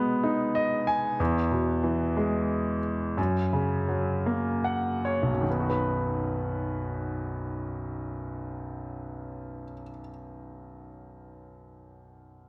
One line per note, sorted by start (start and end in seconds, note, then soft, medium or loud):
0.00 1.16 B2 medium
0.00 0.84 G#3 soft
0.00 1.16 B3 soft
0.23 1.17 D#4 soft
0.55 0.85 D#5 soft
0.87 1.17 G#5 medium
1.20 3.14 E2 medium
1.51 2.80 B2 soft
1.84 3.14 E3 soft
2.17 3.15 G#3 soft
3.18 5.31 F#2 soft
3.53 5.01 C#3 soft
3.88 5.42 F#3 soft
4.26 5.43 A#3 soft
4.64 5.02 F#5 soft
5.05 5.44 C#5 soft
5.23 9.62 B1 soft
5.32 9.72 F#2 soft
5.41 9.81 D#3 soft
5.51 9.90 B3 soft
5.60 9.99 F#4 soft
5.70 10.09 B4 soft